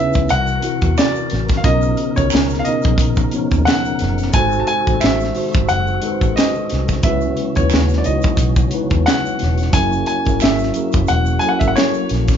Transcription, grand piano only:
0.00 0.31 E5 medium
0.30 0.99 F#5 loud
0.98 1.54 D5 loud
1.57 1.64 F5 medium
1.64 2.18 D#5 medium
2.16 2.56 C#5 medium
2.59 2.66 F5 medium
2.64 3.28 D#5 medium
3.65 4.29 F#5 loud
4.34 4.59 G#5 loud
4.60 4.67 A5 medium
4.67 5.02 G#5 loud
5.00 5.70 E5 medium
5.69 6.32 F#5 loud
6.36 6.99 D#5 medium
7.04 7.52 E5 medium
7.56 8.00 C#5 medium
7.98 8.04 D5 medium
8.05 8.68 D#5 medium
9.06 9.75 F#5 loud
9.73 10.06 G#5 loud
10.07 10.42 G#5 medium
10.42 11.11 E5 medium
11.08 11.41 F#5 medium
11.39 11.49 G#5 loud
11.49 11.59 F#5 medium
11.59 11.68 E5 medium
11.68 11.76 F#5 medium
11.76 12.37 C#5 loud

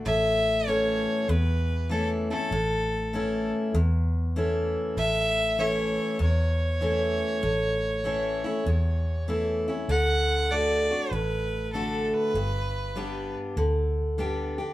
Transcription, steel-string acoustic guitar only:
0.06 1.24 A2 medium
0.67 1.26 E3 medium
0.67 1.27 A3 medium
0.67 1.27 C#4 medium
0.67 1.27 E4 medium
1.29 2.47 E2 medium
1.89 2.28 E3 medium
1.89 2.29 A3 medium
1.89 2.29 C#4 medium
1.89 2.29 E4 medium
2.30 2.52 C#4 soft
2.30 2.51 E4 medium
2.52 3.70 A2 medium
3.13 3.72 E3 medium
3.13 3.72 A3 medium
3.13 3.73 C#4 medium
3.13 3.73 E4 medium
3.75 4.93 E2 medium
4.36 4.95 E3 medium
4.36 4.95 A3 medium
4.36 4.96 C#4 medium
4.36 4.96 E4 medium
4.98 6.16 A2 medium
5.58 6.18 E3 medium
5.58 6.18 A3 medium
5.58 6.18 C#4 medium
5.58 6.18 E4 medium
6.81 7.40 E3 medium
6.81 7.41 A3 medium
6.81 7.41 C#4 medium
6.81 7.41 E4 medium
7.43 8.61 A2 medium
8.04 8.43 E3 medium
8.04 8.43 A3 medium
8.04 8.43 C#4 medium
8.04 8.43 E4 medium
8.44 8.66 C#4 soft
8.44 8.65 E4 medium
8.66 9.85 E2 medium
9.28 9.66 E3 medium
9.28 9.66 A3 medium
9.28 9.66 C#4 medium
9.28 9.67 E4 medium
9.68 9.89 C#4 soft
9.68 9.88 E4 medium
9.89 10.49 D3 medium
10.51 10.89 D3 medium
10.51 10.89 A3 medium
10.51 10.89 D4 medium
10.51 10.89 F#4 medium
10.91 11.12 D4 soft
10.91 11.11 F#4 medium
11.13 12.31 A2 medium
11.74 12.33 D3 soft
11.74 12.33 A3 medium
11.74 12.33 D4 medium
11.74 12.33 F#4 medium
12.35 13.53 G2 medium
12.96 13.55 G3 medium
12.96 13.55 B3 medium
12.96 13.55 D4 medium
12.96 13.56 G4 medium
13.57 14.73 D3 medium
14.18 14.57 G3 medium
14.18 14.57 B3 medium
14.18 14.57 D4 medium
14.18 14.57 G4 medium
14.58 14.73 D4 soft
14.58 14.73 G4 medium

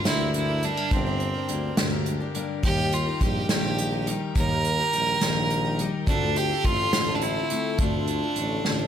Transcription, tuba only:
0.05 0.73 D2 medium
0.91 1.36 G1 medium
1.48 1.71 D2 medium
1.77 2.24 D2 medium
2.64 3.09 D#2 medium
3.21 3.44 A#1 medium
3.50 4.17 A#1 medium
4.36 4.81 D#2 medium
4.93 5.16 A#1 medium
5.22 5.89 A#1 medium
6.07 6.52 D2 loud
6.64 6.87 A1 medium
6.94 7.40 A1 medium
7.79 8.24 D2 medium
8.37 8.59 A1 medium
8.65 8.87 A1 medium

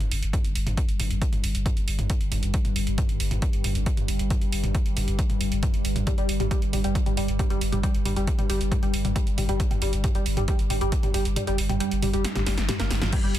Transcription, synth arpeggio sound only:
6.07 6.14 G3 medium
6.18 6.28 G3 loud
6.40 6.47 G3 medium
6.51 6.61 G3 loud
6.73 6.80 G3 medium
6.84 6.94 G3 loud
7.06 7.13 G3 medium
7.17 7.27 G3 loud
7.39 7.46 G3 medium
7.50 7.60 G3 loud
7.72 7.79 G3 medium
7.83 7.93 G3 loud
8.05 8.12 G3 medium
8.16 8.26 G3 loud
8.39 8.45 G3 medium
8.50 8.59 G3 loud
8.72 8.78 G3 medium
8.83 8.93 G3 loud
9.05 9.11 G3 medium
9.16 9.26 G3 loud
9.38 9.44 G3 medium
9.49 9.59 G3 loud
9.71 9.78 G3 medium
9.82 9.92 G3 loud
10.04 10.11 G3 medium
10.15 10.25 G3 loud
10.37 10.44 G3 medium
10.48 10.58 G3 loud
10.70 10.77 G3 medium
10.81 10.91 G3 loud
11.03 11.10 G3 medium
11.14 11.24 G3 loud
11.36 11.43 G3 medium
11.47 11.57 G3 loud
11.69 11.76 G3 medium
11.80 11.90 G3 loud
12.02 12.09 G3 medium
12.14 12.23 G3 loud
12.36 12.42 G3 medium
12.47 12.56 G3 medium
12.69 12.73 G3 medium
12.80 12.90 A#3 medium
13.02 13.08 F3 medium
13.13 13.19 G3 medium
13.24 13.34 G3 loud

